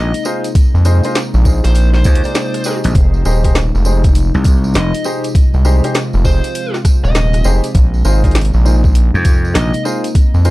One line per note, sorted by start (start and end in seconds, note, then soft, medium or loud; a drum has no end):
0.00 0.11 A#1 loud
0.00 10.50 C3 medium
0.00 10.50 G#3 medium
0.00 2.91 A#3 medium
0.00 2.91 D#4 medium
0.00 0.22 D#5 medium
0.14 closed hi-hat medium
0.14 tambourine soft
0.25 0.45 D#4 loud
0.25 0.45 F4 medium
0.25 0.45 G#4 medium
0.25 0.45 C5 loud
0.25 tambourine loud
0.44 closed hi-hat medium
0.44 tambourine soft
0.55 kick loud
0.55 closed hi-hat medium
0.55 tambourine medium
0.74 1.01 F2 medium
0.74 tambourine soft
0.85 1.01 D#4 loud
0.85 1.01 F4 medium
0.85 1.01 G#4 medium
0.85 1.01 C5 loud
0.85 cross-stick soft
0.85 closed hi-hat soft
0.85 tambourine loud
1.03 1.16 D#4 loud
1.03 1.17 F4 medium
1.03 1.16 G#4 medium
1.03 1.16 C5 loud
1.03 closed hi-hat medium
1.03 tambourine soft
1.15 snare loud
1.15 closed hi-hat medium
1.15 tambourine medium
1.34 1.61 A#1 loud
1.34 tambourine soft
1.45 1.65 D#4 medium
1.45 1.65 F4 medium
1.45 1.65 G#4 medium
1.45 1.65 C5 medium
1.45 kick medium
1.45 tambourine medium
1.64 2.04 A#1 loud
1.64 1.89 C5 medium
1.64 closed hi-hat medium
1.64 tambourine soft
1.75 closed hi-hat medium
1.75 tambourine medium
1.93 2.77 C5 medium
1.93 snare soft
1.93 tambourine soft
2.04 2.21 D#2 medium
2.04 2.22 D#4 medium
2.04 2.22 F4 medium
2.04 2.22 G#4 medium
2.04 2.22 C5 medium
2.04 kick loud
2.04 closed hi-hat medium
2.04 tambourine medium
2.15 closed hi-hat soft
2.24 2.63 D#4 medium
2.24 2.63 F4 medium
2.24 2.63 G#4 medium
2.24 2.63 D5 medium
2.24 closed hi-hat soft
2.24 tambourine soft
2.35 snare loud
2.35 closed hi-hat medium
2.35 tambourine medium
2.54 cross-stick soft
2.54 closed hi-hat medium
2.54 tambourine soft
2.64 3.23 D#4 medium
2.64 3.23 G4 medium
2.64 3.23 G#4 medium
2.64 3.23 C5 medium
2.64 closed hi-hat soft
2.64 tambourine loud
2.84 2.94 A#1 medium
2.84 closed hi-hat medium
2.84 tambourine soft
2.95 3.23 F1 loud
2.95 7.71 F3 medium
2.95 5.33 D#4 medium
2.95 kick loud
2.95 closed hi-hat medium
2.95 tambourine soft
3.14 tambourine soft
3.25 3.71 D#1 loud
3.25 3.42 D#4 loud
3.25 3.42 G4 medium
3.25 3.42 G#4 medium
3.25 3.42 C5 loud
3.25 cross-stick soft
3.25 tambourine medium
3.44 3.56 D#4 loud
3.44 3.56 G4 medium
3.44 3.56 G#4 medium
3.44 3.56 C5 loud
3.44 kick medium
3.44 closed hi-hat soft
3.44 tambourine soft
3.55 snare loud
3.55 closed hi-hat medium
3.55 tambourine medium
3.75 4.31 F1 loud
3.75 tambourine soft
3.85 4.05 D#4 medium
3.85 4.05 G4 medium
3.85 4.05 G#4 medium
3.85 4.05 C5 medium
3.85 tambourine medium
4.04 kick loud
4.04 closed hi-hat soft
4.04 tambourine soft
4.15 closed hi-hat medium
4.15 tambourine soft
4.34 4.74 C2 loud
4.34 tambourine soft
4.44 kick loud
4.44 closed hi-hat medium
4.44 tambourine medium
4.64 tambourine soft
4.74 4.91 F1 medium
4.74 5.02 D#5 medium
4.74 snare loud
4.74 closed hi-hat medium
4.74 tambourine medium
4.94 closed hi-hat soft
4.94 tambourine soft
5.04 5.25 D#4 loud
5.04 5.25 G4 medium
5.04 5.25 G#4 medium
5.04 5.25 C5 loud
5.04 tambourine medium
5.24 closed hi-hat medium
5.24 tambourine soft
5.35 7.73 F4 medium
5.35 kick loud
5.35 closed hi-hat medium
5.35 tambourine medium
5.54 5.81 C2 medium
5.54 tambourine soft
5.65 5.81 D#4 loud
5.65 5.81 G4 medium
5.65 5.81 G#4 medium
5.65 5.81 C5 loud
5.65 cross-stick soft
5.65 tambourine medium
5.84 5.96 D#4 loud
5.84 5.96 G4 medium
5.84 5.96 G#4 medium
5.84 5.96 C5 loud
5.84 closed hi-hat soft
5.84 tambourine soft
5.94 snare loud
5.94 closed hi-hat medium
5.94 tambourine soft
6.13 6.41 F1 loud
6.13 tambourine soft
6.25 6.45 D#4 medium
6.25 6.45 G4 medium
6.25 6.45 G#4 medium
6.25 6.45 C5 medium
6.25 6.74 C5 medium
6.25 kick medium
6.25 tambourine medium
6.44 closed hi-hat medium
6.44 tambourine soft
6.55 closed hi-hat medium
6.55 tambourine soft
6.74 snare soft
6.74 tambourine soft
6.85 kick loud
6.85 cross-stick medium
6.85 closed hi-hat medium
6.85 tambourine medium
7.04 7.43 D#1 medium
7.04 7.45 D#5 medium
7.04 tambourine soft
7.15 snare loud
7.15 closed hi-hat medium
7.15 tambourine soft
7.33 cross-stick soft
7.33 closed hi-hat soft
7.33 tambourine soft
7.44 7.61 F1 medium
7.44 7.65 D#4 medium
7.44 7.65 G4 medium
7.44 7.65 G#4 medium
7.44 7.65 C5 loud
7.44 tambourine medium
7.64 closed hi-hat medium
7.64 tambourine soft
7.75 8.03 A#1 loud
7.75 10.50 A#3 medium
7.75 10.50 D#4 medium
7.75 kick loud
7.75 closed hi-hat medium
7.75 tambourine medium
7.94 tambourine soft
8.05 8.51 G#1 loud
8.05 8.21 D#4 loud
8.05 8.21 F4 medium
8.05 8.21 G#4 medium
8.05 8.21 C5 loud
8.05 cross-stick soft
8.05 tambourine loud
8.24 8.36 D#4 loud
8.24 8.36 F4 medium
8.24 8.36 G#4 medium
8.24 8.36 C5 loud
8.24 kick medium
8.24 closed hi-hat soft
8.24 tambourine soft
8.31 snare loud
8.31 closed hi-hat soft
8.35 closed hi-hat medium
8.35 tambourine soft
8.41 closed hi-hat soft
8.45 closed hi-hat soft
8.53 9.11 A#1 loud
8.53 tambourine soft
8.65 8.85 D#4 medium
8.65 8.85 F4 medium
8.65 8.85 G#4 medium
8.65 8.85 C5 medium
8.65 tambourine medium
8.84 kick loud
8.84 tambourine soft
8.95 closed hi-hat medium
8.95 tambourine medium
9.14 9.53 F2 loud
9.14 tambourine soft
9.25 kick loud
9.25 closed hi-hat medium
9.25 tambourine medium
9.45 tambourine soft
9.55 9.71 A#1 medium
9.55 9.82 D#5 medium
9.55 snare loud
9.55 closed hi-hat medium
9.55 tambourine medium
9.73 closed hi-hat medium
9.73 tambourine soft
9.85 10.05 D#4 loud
9.85 10.05 F4 medium
9.85 10.05 G#4 medium
9.85 10.05 C5 loud
9.85 tambourine medium
10.04 closed hi-hat medium
10.04 tambourine soft
10.15 kick loud
10.15 closed hi-hat medium
10.15 tambourine soft
10.34 10.50 F2 medium
10.34 tambourine soft
10.45 10.50 D#4 loud
10.45 10.50 F4 medium
10.45 10.50 G#4 medium
10.45 10.50 C5 loud
10.45 cross-stick soft
10.45 closed hi-hat soft
10.45 tambourine medium